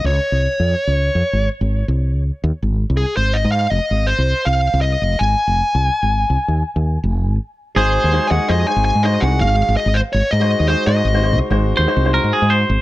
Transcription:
<<
  \new Staff \with { instrumentName = "Lead electric guitar" } { \time 7/4 \key aes \mixolydian \tempo 4 = 164 des''1 r2. | r4 aes'8 c''8 ees''8 f''8 ees''4 c''4 f''4 ees''4 | aes''1. r4 | c''4~ c''16. aes''32 ges''8 ees''8 aes''8 aes''8 ees''8 ges''8 f''4 ees''8 c''8 des''8 |
ees''4 c''8 ees''4. r1 | }
  \new Staff \with { instrumentName = "Clean electric guitar" } { \time 7/4 \key aes \mixolydian r1. r4 | r1. r4 | r1. r4 | aes'1.~ aes'4~ |
aes'1 c''4 bes'8 aes'8 c''4 | }
  \new Staff \with { instrumentName = "Grand piano" } { \time 7/4 \key aes \mixolydian r1. r4 | r1. r4 | r1. r4 | <aes ees' ges' c''>8. r16 <aes ees' ges' c''>8 <aes ees' ges' ees''>8 <aes ees' ges' c''>8 <aes ees' ges' c''>8. r16 <aes ees' ges' c''>8 <aes ees' ges' aes'>4.~ <aes ees' ges' aes'>16 r4 r16 |
r16 <aes ees' ges' c''>8. <aes ees' ges' ees''>8 <aes ees' ges' c''>8. <aes ees' ges' c''>16 <aes ees' ges' c''>8. <aes ees' ges' c''>8. r16 <aes ees' ges' c''>8 <aes ees' ges' c''>4.~ <aes ees' ges' c''>16 r8 | }
  \new Staff \with { instrumentName = "Fretless electric bass" } { \clef bass \time 7/4 \key aes \mixolydian des,8 r16 c,8 r16 f,8 r16 des,8. f,16 r16 aes,,8 r16 aes,,8. c,8. des,8 r16 ees,16 r16 | aes,,8. c,8 r16 aes,,8. aes,8. f,,16 r16 aes,,8. c,8 r16 c,8. c,8. f,,8 | aes,,8 r16 f,,8 r16 c,8 r16 aes,,8. c,16 r16 ees,8 r16 ees,8. f,,8. aes,,16 r4 | aes,,8. ees,8 r16 ees,16 r16 f,8 r16 aes,,8 aes,8. c,8 aes,,8. aes,,16 r16 aes,,8 r16 aes,,16 r16 |
aes,8. ees,8 r16 aes,8 aes,,8. c,16 r16 aes,,8. ees,16 r16 c,8. aes,16 r16 aes,8. aes,,16 r16 | }
>>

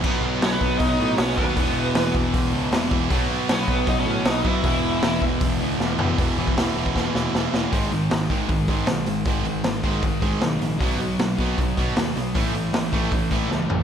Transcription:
<<
  \new Staff \with { instrumentName = "Lead electric guitar" } { \time 4/4 \key gis \phrygian \tempo 4 = 156 r4 <cis' cis''>16 <b b'>8. <dis' dis''>16 <dis' dis''>8. <cis' cis''>8 <b b'>8~ | <b b'>4. r2 r8 | r4 <cis' cis''>16 <b b'>8. <dis' dis''>16 <cis' cis''>8. <dis' dis''>8 <e' e''>8~ | <e' e''>4. r2 r8 |
r1 | r1 | r1 | r1 |
r1 | }
  \new Staff \with { instrumentName = "Distorted electric guitar" } { \clef bass \time 4/4 \key gis \phrygian <b, fis b>2~ <b, fis b>8 <b, fis b>8 <b, fis b>4 | <e, b, e>2~ <e, b, e>8 <e, b, e>8 <e, b, e>4 | <b, fis b>2~ <b, fis b>8 <b, fis b>8 <b, fis b>4 | <e, b, e>2~ <e, b, e>8 <e, b, e>8 <e, b, e>4 |
r1 | <gis, dis gis>4. <gis, dis gis>2~ <gis, dis gis>8 | <gis, dis gis>4. <gis, dis gis>2~ <gis, dis gis>8 | <b, fis b>4. <b, fis b>2~ <b, fis b>8 |
<a, e a>4. <a, e a>2~ <a, e a>8 | }
  \new Staff \with { instrumentName = "Distorted electric guitar" } { \clef bass \time 4/4 \key gis \phrygian <b, fis b>2.~ <b, fis b>8 <b, fis b>8 | <e, b, e>2.~ <e, b, e>8 <e, b, e>8 | <b, fis b>2.~ <b, fis b>8 <b, fis b>8 | <e, b, e>2.~ <e, b, e>8 <e, b, e>8 |
<e, b, e>8 <e, b, e>8 <e, b, e>8 <e, b, e>8 <e, b, e>8 <e, b, e>8 <e, b, e>8 <e, b, e>8 | <gis, dis gis>8 <gis, dis>8 <gis, dis>8 <gis, dis gis>8 <gis, dis>8 <gis, dis gis>8 <gis, dis>8 <gis, dis>8 | <gis, dis gis>8 <gis, dis>8 <gis, dis>8 <gis, dis gis>8 <gis, dis>8 <gis, dis gis>8 <gis, dis>8 <gis, dis>8 | <b, fis b>8 <b, fis>8 <b, fis>8 <b, fis b>8 <b, fis>8 <b, fis b>8 <b, fis>8 <b, fis>8 |
<a, e a>8 <a, e>8 <a, e>8 <a, e a>8 <a, e>8 <a, e a>8 <a, e>8 <a, e>8 | }
  \new Staff \with { instrumentName = "Distorted electric guitar" } { \clef bass \time 4/4 \key gis \phrygian <b, fis b>2.~ <b, fis b>8 <b, fis b>8 | <e, b, e>2.~ <e, b, e>8 <e, b, e>8 | <b, fis b>2.~ <b, fis b>8 <b, fis b>8 | <e, b, e>2.~ <e, b, e>8 <e, b, e>8 |
<e, b, e>8 <e, b, e>8 <e, b, e>8 <e, b, e>8 <e, b, e>8 <e, b, e>8 <e, b, e>8 <e, b, e>8 | <gis, dis gis>8 <gis, dis>8 <gis, dis>8 <gis, dis gis>8 <gis, dis>8 <gis, dis gis>8 <gis, dis>8 <gis, dis>8 | <gis, dis gis>8 <gis, dis>8 <gis, dis>8 <gis, dis gis>8 <gis, dis>8 <gis, dis gis>8 <gis, dis>8 <gis, dis>8 | <b, fis b>8 <b, fis>8 <b, fis>8 <b, fis b>8 <b, fis>8 <b, fis b>8 <b, fis>8 <b, fis>8 |
<a, e a>8 <a, e>8 <a, e>8 <a, e a>8 <a, e>8 <a, e a>8 <a, e>8 <a, e>8 | }
  \new Staff \with { instrumentName = "Picked electric bass" } { \clef bass \time 4/4 \key gis \phrygian b,,8 b,,8 b,,8 b,,8 b,,8 a,8 b,,8 dis,8 | e,,8 e,,8 e,,8 e,,8 e,,8 cis,8 e,,8 e,,8 | b,,8 b,,8 b,,8 b,,8 b,,8 a,8 b,,8 b,,8 | e,,8 e,,8 e,,8 e,,8 e,,8 cis,8 e,,8 e,,8 |
e,,8 e,,8 e,,8 e,,8 e,,8 e,,8 e,,8 e,,8 | gis,,8 gis,,8 gis,,8 gis,,8 gis,,4 b,,8 gis,,8 | gis,,8 gis,,8 gis,,8 gis,,8 gis,,4 b,,8 ais,,8 | b,,8 b,,8 b,,8 b,,8 b,,4 dis,8 b,,8 |
a,,8 a,,8 a,,8 a,,8 a,,4 cis,8 a,,8 | }
  \new DrumStaff \with { instrumentName = "Drums" } \drummode { \time 4/4 <cymc bd>4 <hho sn>8 bd8 <hho bd>4 <hho sn>8 bd8 | <hho bd>4 <hho sn>8 bd8 <hho bd>4 <hho sn>8 bd8 | <hho bd>4 <hho sn>8 bd8 <hho bd>4 <hho sn>8 bd8 | <hho bd>4 <hho sn>8 bd8 <hho bd>4 sn8 tomfh8 |
<hho bd>8. bd16 <hho sn>8. bd16 <bd sn>8 sn8 sn8 sn8 | <hho bd>8 hho8 <hho sn>8 <hho bd>8 <hho bd>8 <hho bd>8 <hho sn>8 hho8 | <hho bd>8 hho8 <hho sn>8 <hho bd>8 <hho bd>8 <hho bd>8 <hho sn>8 hho8 | <hho bd>8 hho8 <hho sn>8 <hho bd>8 <hho bd>8 <hho bd>8 <hho sn>8 hho8 |
<hho bd>8 hho8 <hho sn>8 <hho bd>8 <hho bd>8 <hho bd>8 sn8 tomfh8 | }
>>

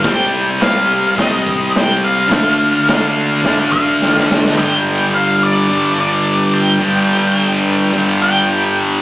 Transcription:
<<
  \new Staff \with { instrumentName = "Lead electric guitar" } { \time 4/4 \key c \dorian \tempo 4 = 106 g''4 f''4 ees''4 g''8 f''8~ | f''2~ f''8 f''4 r8 | g''4 f''8 d''4 d''4 g''8~ | g''2~ g''8 g''4 r8 | }
  \new Staff \with { instrumentName = "Distorted electric guitar" } { \clef bass \time 4/4 \key c \dorian <c g c'>2 <c g c'>2 | <d a d'>2 <d a d'>2 | <g, d g>2 <g, d g>2 | <g, d g>2 <g, d g>2 | }
  \new DrumStaff \with { instrumentName = "Drums" } \drummode { \time 4/4 <hho bd sn>4 <hho sn>4 <hho bd sn>8 bd8 <hho sn>4 | <hho bd sn>4 <hho sn>4 <hho bd sn>8 bd8 sn16 sn16 sn16 sn16 | r4 r4 r4 r4 | r4 r4 r4 r4 | }
>>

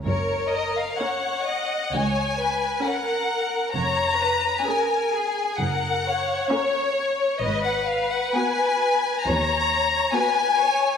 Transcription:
<<
  \new Staff \with { instrumentName = "Violin section" } { \time 4/4 \key fis \major \tempo 4 = 66 cis''8 dis''16 eis''16 fis''4 gis''4 fis''4 | ais''4 gis''4 fis''4 cis''4 | dis''16 fis''16 eis''16 fis''16 gis''4 ais''4 gis''4 | }
  \new Staff \with { instrumentName = "Violin section" } { \time 4/4 \key fis \major ais'4 cis''8 dis''8 cis''8 b'8 ais'4 | cis''8 b'8 ais'8 gis'8 ais'8 cis''4. | b'2 cis''4 b'8 cis''8 | }
  \new Staff \with { instrumentName = "Viola section" } { \time 4/4 \key fis \major r4 <cis' ais'>4 r4 <cis' ais'>4 | r4 <cis' gis'>4 r4 <cis' ais'>4 | r4 <b fis'>4 r4 <b fis'>4 | }
  \new Staff \with { instrumentName = "Cello section" } { \clef bass \time 4/4 \key fis \major fis,4 r4 cis,4 r4 | eis,4 r4 fis,4 r4 | gis,4 r4 dis,4 r4 | }
  \new Staff \with { instrumentName = "Double bass section" } { \clef bass \time 4/4 \key fis \major fis,,4 r4 cis,4 r4 | eis,,4 r4 fis,,4 r4 | gis,,4 r4 dis,4 r4 | }
>>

